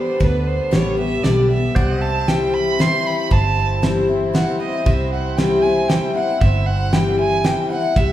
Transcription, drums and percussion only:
0.21 kick, ride
0.73 snare, ride
1.24 snare, ride
1.76 kick, ride
2.28 snare, ride
2.80 snare, ride
3.31 kick, ride
3.83 snare, ride
4.35 snare, ride
4.86 kick, ride
5.38 snare, ride
5.90 snare, ride
6.41 kick, ride
6.93 snare, ride
7.45 snare, ride
7.96 kick, ride

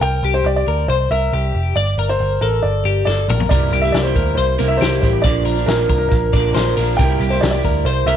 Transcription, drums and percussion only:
3.08 snare
3.30 mid tom
3.40 floor tom
3.51 kick, closed hi-hat
3.73 closed hi-hat
3.94 snare, closed hi-hat
4.16 kick, closed hi-hat
4.38 closed hi-hat
4.60 closed hi-hat
4.82 snare, closed hi-hat
5.03 kick, closed hi-hat
5.24 kick, closed hi-hat
5.46 closed hi-hat
5.68 snare, closed hi-hat
5.89 kick, closed hi-hat
6.11 kick, closed hi-hat
6.33 kick, closed hi-hat
6.56 snare, closed hi-hat
6.77 open hi-hat
6.99 kick, closed hi-hat
7.21 closed hi-hat
7.43 snare, closed hi-hat
7.65 kick, closed hi-hat
7.86 closed hi-hat
8.08 closed hi-hat

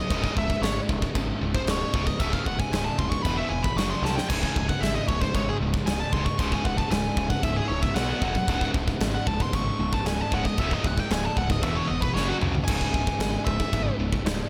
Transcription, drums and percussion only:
0.10 kick, china
0.24 kick
0.37 kick
0.50 kick
0.63 snare, china
0.89 kick
1.02 kick
1.15 kick, china
1.55 kick
1.67 snare, china
1.94 kick
2.07 kick
2.20 kick, china
2.33 kick
2.46 kick
2.60 kick
2.73 snare, china
2.99 kick
3.12 kick
3.25 kick, china
3.64 kick
3.78 snare, china
4.05 snare
4.18 snare
4.30 kick, china, crash
4.43 kick
4.56 kick
4.69 kick
4.83 snare, china
5.09 kick
5.22 kick
5.35 kick, china
5.74 kick
5.87 snare, china
6.13 kick
6.26 kick
6.39 kick, china
6.52 kick
6.65 kick
6.78 kick
6.91 snare, china
7.17 kick
7.30 kick
7.43 kick, china
7.83 kick
7.96 snare, china
8.22 kick
8.35 kick
8.48 kick, china
8.61 kick
8.74 kick
8.88 kick
9.00 snare, china
9.27 kick
9.40 kick
9.53 kick, china
9.93 kick
10.06 snare, china
10.32 kick
10.45 kick
10.58 kick, china
10.71 kick
10.84 kick
10.98 kick
11.11 snare, china
11.37 kick
11.50 kick
11.63 kick, china
12.02 kick
12.16 snare
12.42 mid tom
12.55 floor tom
12.68 kick, china, crash
12.81 kick
12.94 kick
13.07 kick
13.20 snare, china
13.47 kick
13.60 kick
13.73 kick, china
14.13 kick
14.26 snare, china

